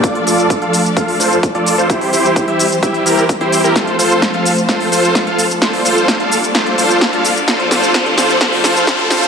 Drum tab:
HH |xxoxxxoxxooxxxox|xooxxxoxxxoxxxox|xxoxxxoxxooxxxox|xooxxxoxxxoxxxox|
SH |x-xxx-xxx-xxx-xx|x-xxx-xxx-xxx-xx|x-xxx-xxx-xxx-xx|x-xxx-xxx-xxx-xx|
SD |----------------|----------------|o---o---o---o---|o---o---o---o---|
BD |o---o---o---o---|o---o---o---o---|o---o---o---o---|o---o---o---o---|

HH |xxoxxxoxxooxxxo-|
SH |x-xxx-xxx-xxx-xx|
SD |o-o-o-o-o-o-o-o-|
BD |o---o---o---o---|